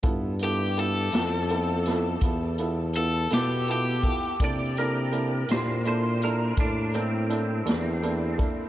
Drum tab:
HH |xxxxxxxxxxxx|xxxxxxxxxxxx|
SD |---o-o---o--|---o-----o--|
BD |o-----o----o|o-----o----o|